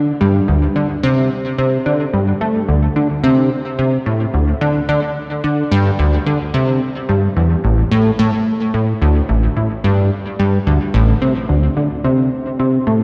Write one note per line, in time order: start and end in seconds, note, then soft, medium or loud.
0.00 0.13 D3 medium
0.21 0.40 G2 loud
0.48 0.68 D2 medium
0.76 0.87 D3 medium
1.03 1.30 C3 loud
1.58 1.78 C3 medium
1.86 2.05 D3 medium
2.14 2.33 G2 medium
2.41 2.60 A3 medium
2.69 2.88 D2 medium
2.96 3.08 D3 medium
3.24 3.50 C3 loud
3.79 3.98 C3 medium
4.06 4.25 A2 medium
4.34 4.53 D2 medium
4.61 4.80 D3 loud
4.89 5.00 D3 loud
5.44 5.63 D3 medium
5.71 5.91 G2 loud
5.99 6.18 D2 medium
6.26 6.38 D3 medium
6.54 6.80 C3 loud
7.09 7.28 G2 medium
7.36 7.56 E2 medium
7.64 7.83 A1 medium
7.91 8.11 A2 loud
8.19 8.31 A2 loud
8.74 8.93 A2 medium
9.02 9.21 D2 loud
9.29 9.48 A1 medium
9.57 9.68 A2 medium
9.84 10.10 G2 loud
10.39 10.59 G2 medium
10.67 10.78 D2 medium
10.94 11.13 A1 loud
11.22 11.33 C3 medium
11.49 11.69 D2 medium
11.77 11.88 D3 medium
12.04 12.31 C3 medium
12.59 12.79 C3 medium
12.87 13.04 A2 medium